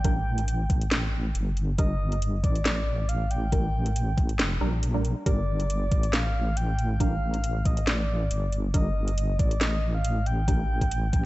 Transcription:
0.00 0.68 A1 medium
0.00 0.70 G5 loud
0.04 0.13 G3 medium
0.04 0.13 D4 medium
0.04 0.13 A#4 medium
0.04 kick loud
0.04 closed hi-hat medium
0.38 closed hi-hat medium
0.48 closed hi-hat medium
0.70 1.34 A1 medium
0.70 kick loud
0.70 closed hi-hat medium
0.81 closed hi-hat medium
0.91 snare loud
0.91 closed hi-hat medium
1.35 1.77 G1 medium
1.35 closed hi-hat medium
1.57 closed hi-hat medium
1.78 2.45 G1 loud
1.78 1.86 G3 medium
1.78 1.86 D4 medium
1.78 1.86 A#4 medium
1.78 2.19 D#5 loud
1.78 kick loud
1.78 closed hi-hat medium
2.12 closed hi-hat soft
2.22 closed hi-hat medium
2.43 4.16 A1 medium
2.43 3.10 D5 medium
2.43 kick loud
2.43 closed hi-hat medium
2.55 closed hi-hat medium
2.65 snare loud
2.65 closed hi-hat medium
3.09 3.32 F5 loud
3.09 closed hi-hat medium
3.31 4.18 G5 loud
3.31 closed hi-hat soft
3.52 3.60 G3 medium
3.52 3.60 D4 medium
3.52 3.60 A#4 medium
3.52 kick loud
3.52 closed hi-hat medium
3.86 closed hi-hat soft
3.96 closed hi-hat medium
4.17 4.41 A1 medium
4.17 kick loud
4.17 closed hi-hat medium
4.29 closed hi-hat soft
4.39 4.59 F1 medium
4.39 snare loud
4.39 closed hi-hat medium
4.61 5.15 A#1 medium
4.61 4.69 G3 medium
4.61 4.69 D4 medium
4.61 4.69 A#4 loud
4.83 closed hi-hat medium
4.94 5.01 G3 medium
4.94 5.01 D4 medium
4.94 5.01 A#4 medium
5.05 closed hi-hat soft
5.26 5.93 G1 loud
5.26 5.34 G3 medium
5.26 5.34 D4 medium
5.26 5.34 A#4 medium
5.26 6.15 D5 loud
5.26 kick loud
5.26 closed hi-hat medium
5.60 closed hi-hat soft
5.70 closed hi-hat medium
5.91 7.64 A1 medium
5.91 kick loud
5.91 closed hi-hat soft
6.03 closed hi-hat soft
6.13 6.58 F5 loud
6.13 snare loud
6.13 closed hi-hat medium
6.57 6.93 G5 loud
6.57 closed hi-hat medium
6.79 closed hi-hat medium
6.93 7.02 G5 medium
7.00 7.08 G3 medium
7.00 7.08 D4 medium
7.00 7.08 A#4 medium
7.00 7.67 F5 loud
7.00 kick loud
7.00 closed hi-hat medium
7.34 closed hi-hat medium
7.44 closed hi-hat medium
7.65 8.29 A1 medium
7.65 7.89 D#5 loud
7.65 kick loud
7.65 closed hi-hat medium
7.77 closed hi-hat medium
7.87 8.53 D5 medium
7.87 snare loud
7.87 closed hi-hat medium
8.31 8.73 G1 medium
8.31 closed hi-hat medium
8.52 closed hi-hat medium
8.74 9.41 G1 loud
8.74 8.82 G3 medium
8.74 8.82 D4 medium
8.74 8.82 A#4 medium
8.74 9.41 D#5 loud
8.74 kick loud
8.74 closed hi-hat medium
9.08 closed hi-hat medium
9.18 closed hi-hat medium
9.39 11.12 A1 medium
9.39 9.60 D5 medium
9.39 kick loud
9.39 closed hi-hat medium
9.51 closed hi-hat medium
9.61 9.92 D#5 loud
9.61 snare loud
9.61 closed hi-hat medium
9.94 10.28 F5 loud
10.04 closed hi-hat medium
10.26 11.25 G5 loud
10.26 closed hi-hat medium
10.48 10.56 G3 medium
10.48 10.56 D4 medium
10.48 10.56 A#4 medium
10.48 kick loud
10.48 closed hi-hat medium
10.81 kick medium
10.81 closed hi-hat medium
10.91 closed hi-hat medium
11.13 11.25 A1 medium
11.13 kick loud
11.13 closed hi-hat medium

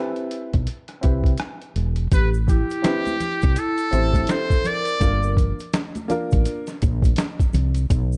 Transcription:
0.00 0.48 C4 medium
0.00 0.48 E4 medium
0.00 0.49 G4 medium
0.00 0.28 A4 medium
0.00 0.49 B4 medium
0.16 closed hi-hat soft
0.31 closed hi-hat medium
0.53 0.66 B1 medium
0.53 kick medium
0.53 closed hi-hat soft
0.67 closed hi-hat medium
0.88 cross-stick soft
0.88 closed hi-hat soft
1.01 1.35 C2 medium
1.01 1.30 C4 medium
1.01 1.30 E4 medium
1.01 1.31 G4 medium
1.01 1.31 B4 medium
1.01 kick medium
1.01 closed hi-hat medium
1.24 kick medium
1.24 closed hi-hat soft
1.38 cross-stick loud
1.38 closed hi-hat medium
1.62 closed hi-hat soft
1.76 2.07 E1 medium
1.76 closed hi-hat medium
1.96 closed hi-hat soft
2.12 2.62 A1 medium
2.12 2.28 G4 medium
2.12 2.29 B4 medium
2.12 kick loud
2.12 closed hi-hat medium
2.12 shaker medium
2.34 shaker medium
2.48 3.53 E4 medium
2.48 3.60 G4 medium
2.48 kick medium
2.48 closed hi-hat medium
2.48 low conga medium
2.48 shaker soft
2.70 closed hi-hat soft
2.70 shaker soft
2.82 3.11 C4 medium
2.82 3.11 E4 medium
2.82 3.12 G4 medium
2.82 3.12 B4 medium
2.82 snare loud
2.82 closed hi-hat medium
2.82 high conga soft
2.82 shaker medium
3.05 closed hi-hat soft
3.05 high conga medium
3.05 shaker soft
3.20 closed hi-hat medium
3.20 low conga medium
3.20 shaker soft
3.42 3.55 C2 medium
3.42 kick medium
3.42 closed hi-hat soft
3.42 shaker soft
3.56 4.29 E4 medium
3.56 4.32 A4 loud
3.56 closed hi-hat medium
3.56 shaker medium
3.78 closed hi-hat soft
3.78 shaker soft
3.91 4.24 A1 medium
3.91 4.95 C4 medium
3.91 4.95 E4 medium
3.91 4.96 G4 medium
3.91 4.96 C5 medium
3.91 closed hi-hat medium
3.91 shaker soft
4.13 kick medium
4.13 snare soft
4.13 closed hi-hat soft
4.13 high conga medium
4.13 shaker soft
4.27 4.65 A4 medium
4.27 4.68 C5 loud
4.27 snare loud
4.27 closed hi-hat medium
4.27 shaker medium
4.50 kick loud
4.50 closed hi-hat soft
4.50 shaker soft
4.64 5.38 A#4 medium
4.64 5.38 D5 loud
4.64 closed hi-hat medium
4.64 low conga medium
4.64 shaker soft
4.85 closed hi-hat medium
4.85 shaker medium
5.00 5.51 G1 loud
5.00 5.08 A3 medium
5.00 5.55 D4 medium
5.00 5.55 F4 medium
5.00 5.55 A#4 medium
5.00 kick loud
5.00 closed hi-hat medium
5.00 shaker medium
5.06 5.57 A#3 medium
5.23 shaker soft
5.37 kick medium
5.37 closed hi-hat medium
5.37 low conga medium
5.37 shaker soft
5.59 closed hi-hat medium
5.59 shaker soft
5.73 snare loud
5.73 closed hi-hat medium
5.73 high conga soft
5.73 shaker medium
5.95 closed hi-hat soft
5.95 high conga medium
5.95 shaker soft
6.08 6.63 A#3 medium
6.08 6.63 D4 medium
6.08 6.64 F4 medium
6.08 6.64 A#4 loud
6.08 closed hi-hat medium
6.08 low conga medium
6.08 shaker soft
6.31 6.44 A1 loud
6.31 kick medium
6.31 closed hi-hat soft
6.31 shaker soft
6.45 closed hi-hat medium
6.45 shaker medium
6.67 snare soft
6.67 closed hi-hat soft
6.67 shaker soft
6.82 7.13 A#1 medium
6.82 kick medium
6.82 closed hi-hat medium
6.82 shaker soft
7.02 kick loud
7.02 closed hi-hat medium
7.02 high conga medium
7.02 shaker soft
7.16 snare loud
7.16 closed hi-hat medium
7.16 shaker medium
7.40 kick medium
7.40 closed hi-hat soft
7.40 shaker soft
7.53 7.85 C2 medium
7.53 closed hi-hat medium
7.53 low conga medium
7.53 shaker soft
7.74 closed hi-hat soft
7.74 shaker medium
7.90 8.17 B1 loud
7.90 kick loud
7.90 closed hi-hat medium
7.90 shaker medium
8.12 shaker medium

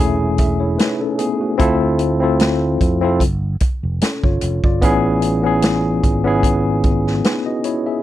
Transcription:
0.00 0.76 E1 medium
0.00 1.41 A3 loud
0.00 1.01 C#4 loud
0.00 0.61 E4 loud
0.00 0.40 G#4 loud
0.38 0.60 G#4 soft
0.38 0.60 E5 medium
0.38 kick medium
0.38 closed hi-hat medium
0.60 0.78 E4 medium
0.60 0.78 C#5 medium
0.78 1.00 D#4 medium
0.78 1.00 B4 medium
0.78 snare loud
0.78 closed hi-hat medium
1.01 1.19 C#4 medium
1.01 1.18 A4 medium
1.19 1.40 B3 medium
1.19 1.40 G#4 medium
1.19 closed hi-hat medium
1.41 1.80 A3 soft
1.41 1.79 F#4 medium
1.58 2.77 D2 loud
1.58 1.98 C4 loud
1.58 1.99 E4 loud
1.58 1.99 F4 loud
1.58 2.00 A4 loud
1.58 kick loud
1.58 closed hi-hat medium
1.99 closed hi-hat medium
2.20 2.73 C4 medium
2.20 2.73 E4 medium
2.20 2.74 F4 medium
2.20 2.74 A4 medium
2.40 snare loud
2.40 closed hi-hat medium
2.81 3.22 F2 medium
2.81 kick medium
2.81 closed hi-hat medium
3.01 3.20 C4 medium
3.01 3.21 E4 medium
3.01 3.22 F4 medium
3.01 3.22 A4 loud
3.20 3.56 G1 medium
3.20 kick medium
3.20 closed hi-hat medium
3.60 muted fingered electric bass stroke soft
3.60 kick medium
3.60 closed hi-hat medium
3.83 3.99 F1 medium
4.01 4.23 C#4 soft
4.01 4.22 A4 medium
4.01 snare loud
4.01 closed hi-hat medium
4.24 4.40 G1 medium
4.24 4.63 F4 medium
4.24 4.62 C#5 medium
4.24 kick medium
4.41 4.61 F1 medium
4.41 closed hi-hat medium
4.64 4.80 G1 medium
4.64 5.03 F4 medium
4.64 5.02 D5 medium
4.64 kick medium
4.81 5.99 A1 loud
4.81 5.21 B3 loud
4.81 5.22 C#4 loud
4.81 5.22 E4 loud
4.81 5.23 G#4 loud
4.81 kick loud
4.81 closed hi-hat medium
5.22 closed hi-hat medium
5.43 5.95 B3 medium
5.43 5.96 C#4 medium
5.43 5.96 E4 medium
5.43 5.97 G#4 medium
5.62 snare loud
5.62 closed hi-hat medium
6.04 7.20 G#1 medium
6.04 kick medium
6.04 closed hi-hat medium
6.24 7.28 B3 medium
6.24 7.28 C#4 medium
6.24 7.25 E4 medium
6.24 7.25 G#4 medium
6.43 kick medium
6.43 closed hi-hat medium
6.84 kick medium
6.84 closed hi-hat medium
7.07 snare soft
7.24 7.46 D#4 medium
7.24 7.45 B4 medium
7.24 snare loud
7.24 closed hi-hat medium
7.46 7.64 F#4 medium
7.46 7.64 D#5 medium
7.64 7.86 E4 medium
7.64 7.85 C#5 medium
7.64 closed hi-hat medium
7.86 8.03 G#4 medium
7.86 8.03 E5 medium

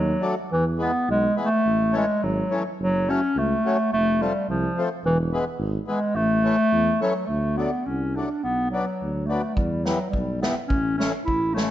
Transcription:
0.00 0.14 D#2 medium
0.00 0.35 F#3 medium
0.21 0.35 F#3 medium
0.21 0.35 A3 medium
0.21 0.35 D4 medium
0.52 0.88 E2 medium
0.52 0.65 E3 medium
0.79 0.92 E3 medium
0.79 0.92 G#3 medium
0.79 0.92 B3 medium
0.79 1.06 B3 medium
1.08 1.27 B1 medium
1.08 1.36 G#3 medium
1.36 1.49 E3 soft
1.36 1.49 G#3 soft
1.36 1.49 B3 medium
1.42 1.93 A3 medium
1.65 2.02 A1 medium
1.92 2.05 E3 medium
1.92 2.05 A3 medium
1.92 2.06 C#4 medium
1.97 2.25 G#3 medium
2.23 2.41 G#1 medium
2.23 2.65 F#3 medium
2.51 2.63 E3 medium
2.51 2.63 A3 soft
2.51 2.63 C#4 medium
2.79 3.16 F#1 medium
2.79 3.12 F#3 medium
3.09 3.21 F#3 medium
3.09 3.21 A3 soft
3.09 3.21 C#4 medium
3.09 3.40 C#4 medium
3.35 3.54 C#2 medium
3.35 3.92 A3 medium
3.65 3.77 F#3 medium
3.65 3.77 A3 soft
3.65 3.77 C#4 medium
3.92 4.28 F1 medium
3.92 4.24 A3 medium
4.21 4.33 F3 medium
4.21 4.48 G3 medium
4.21 4.33 A3 medium
4.21 4.33 C4 medium
4.49 4.67 C2 medium
4.49 4.88 F3 medium
4.78 4.89 F3 medium
4.78 4.89 A3 medium
4.78 4.89 C4 medium
5.03 5.39 E1 medium
5.03 5.18 E3 medium
5.33 5.44 E3 medium
5.33 5.45 G#3 soft
5.33 5.45 B3 medium
5.59 5.77 G#1 medium
5.87 5.99 E3 medium
5.87 6.00 G#3 soft
5.87 6.17 G#3 medium
5.87 6.00 B3 soft
6.14 6.51 A1 medium
6.14 7.01 A3 loud
6.43 6.56 E3 medium
6.43 6.56 A3 medium
6.43 6.56 C#4 medium
6.71 6.90 E2 medium
7.01 7.13 E3 medium
7.01 7.28 F#3 medium
7.01 7.13 A3 medium
7.01 7.14 C#4 medium
7.27 7.66 D2 medium
7.27 7.59 A3 medium
7.57 7.70 F#3 medium
7.57 7.71 A3 soft
7.57 7.88 B3 medium
7.57 7.71 D4 soft
7.86 8.24 C2 medium
7.86 8.17 C#4 medium
8.16 8.29 F#3 soft
8.16 8.28 A3 soft
8.16 8.45 D4 medium
8.16 8.29 D4 soft
8.43 8.81 B1 medium
8.43 8.70 B3 medium
8.71 9.28 F#3 medium
8.71 8.85 F#3 medium
8.71 8.85 B3 soft
8.71 8.85 D4 soft
9.02 9.38 D2 medium
9.26 9.42 F#3 soft
9.26 9.57 A3 medium
9.26 9.42 B3 soft
9.26 9.42 D4 soft
9.55 9.94 E2 medium
9.55 9.86 G3 medium
9.55 kick medium
9.85 9.99 E3 soft
9.85 10.09 F#3 medium
9.85 9.98 G3 medium
9.85 9.99 B3 medium
9.85 snare medium
10.10 10.39 G3 medium
10.10 kick soft
10.14 10.51 B1 medium
10.42 10.55 E3 soft
10.42 10.55 G3 soft
10.42 10.54 B3 medium
10.42 10.55 B3 soft
10.42 snare medium
10.68 11.08 A1 medium
10.68 10.97 C#4 medium
10.68 kick medium
10.98 11.12 E3 soft
10.98 11.13 A3 soft
10.98 11.11 C#4 medium
10.98 11.12 C#4 medium
10.98 snare medium
11.25 11.65 A1 medium
11.25 11.56 E4 medium
11.25 kick soft
11.54 11.69 E3 soft
11.54 11.71 A3 medium
11.54 11.69 A3 soft
11.54 11.69 C#4 soft
11.54 snare medium

